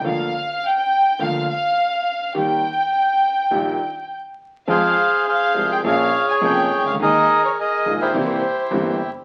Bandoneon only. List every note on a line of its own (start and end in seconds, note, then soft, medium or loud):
4.70 5.27 G#4 medium
4.70 5.27 C5 medium
4.70 5.23 F5 loud
5.28 5.81 G#4 medium
5.28 5.81 C5 medium
5.28 5.68 F5 medium
5.72 5.78 G5 medium
5.86 6.96 G#4 medium
5.86 6.42 C#5 medium
5.86 6.26 F5 medium
6.31 6.36 G#5 loud
6.44 6.96 C#5 medium
6.44 6.84 G5 loud
6.87 6.93 F5 medium
7.02 7.58 G#4 medium
7.02 7.58 A#4 medium
7.02 7.42 D#5 loud
7.45 7.51 C#5 medium
7.59 8.11 G#4 medium
7.59 8.12 A#4 medium
7.59 7.99 D#5 medium
8.01 9.11 E4 medium
8.01 9.11 G4 medium
8.01 8.97 C5 medium